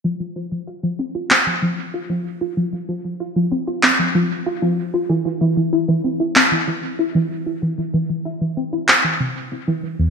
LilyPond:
<<
  \new Staff \with { instrumentName = "Synth pluck" } { \clef bass \time 4/4 \key c \phrygian \tempo 4 = 95 f16 f16 f16 f16 f'16 f16 c'16 f'16 c'16 f16 f16 r16 f'16 f16 r16 f'16 | f16 f16 f16 f16 f'16 f16 c'16 f'16 c'16 f16 f16 r16 f'16 f16 r16 f'16 | e16 e16 e16 e16 e'16 e16 c'16 e'16 c'16 e16 e16 r16 e'16 e16 r16 e'16 | e16 e16 e16 e16 e'16 e16 c'16 e'16 c'16 e16 c16 r16 c16 e16 e16 e,16 | }
  \new DrumStaff \with { instrumentName = "Drums" } \drummode { \time 4/4 r4 r4 hc4 r4 | r4 r4 hc4 r4 | r4 r4 hc4 r4 | r4 r4 hc4 r4 | }
>>